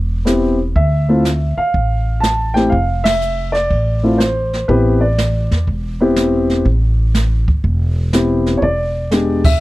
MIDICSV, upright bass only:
0, 0, Header, 1, 3, 480
1, 0, Start_track
1, 0, Key_signature, 0, "minor"
1, 0, Tempo, 491400
1, 742, Time_signature, 4, 2, 24, 8
1, 9378, End_track
2, 0, Start_track
2, 0, Title_t, "Upright bass"
2, 0, Program_c, 0, 32
2, 0, Note_on_c, 0, 28, 76
2, 702, Note_off_c, 0, 28, 0
2, 738, Note_on_c, 0, 38, 81
2, 1504, Note_off_c, 0, 38, 0
2, 1702, Note_on_c, 0, 33, 76
2, 2623, Note_off_c, 0, 33, 0
2, 2658, Note_on_c, 0, 29, 79
2, 3581, Note_off_c, 0, 29, 0
2, 3619, Note_on_c, 0, 33, 75
2, 4542, Note_off_c, 0, 33, 0
2, 4579, Note_on_c, 0, 33, 85
2, 5345, Note_off_c, 0, 33, 0
2, 5386, Note_on_c, 0, 40, 65
2, 5531, Note_off_c, 0, 40, 0
2, 5544, Note_on_c, 0, 28, 77
2, 6465, Note_off_c, 0, 28, 0
2, 6499, Note_on_c, 0, 33, 85
2, 7266, Note_off_c, 0, 33, 0
2, 7305, Note_on_c, 0, 31, 58
2, 7452, Note_off_c, 0, 31, 0
2, 7462, Note_on_c, 0, 28, 82
2, 8384, Note_off_c, 0, 28, 0
2, 8421, Note_on_c, 0, 28, 77
2, 9344, Note_off_c, 0, 28, 0
2, 9378, End_track
3, 0, Start_track
3, 0, Title_t, "Muted upright bass strokes"
3, 1540, Note_on_c, 9, 29, 36
3, 1638, Note_off_c, 9, 29, 0
3, 9378, End_track
0, 0, End_of_file